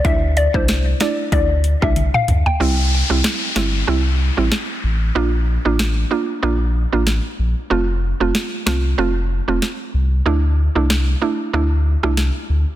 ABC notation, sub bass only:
X:1
M:4/4
L:1/16
Q:"Swing 16ths" 1/4=94
K:Dm
V:1 name="Sub bass" clef=bass
D,,3 C,,3 z2 D,,3 C,,2 z D,, z | C,,3 C,, z2 G,,,2 C,,3 A,,, z2 A,,,2 | B,,,3 A,,,3 z2 B,,,3 A,,,2 z B,,, z | F,,,3 F,,, z2 C,,2 F,,,3 E,,, z2 C,,2 |
D,,3 C,,3 z2 D,,3 C,,2 z D,, z |]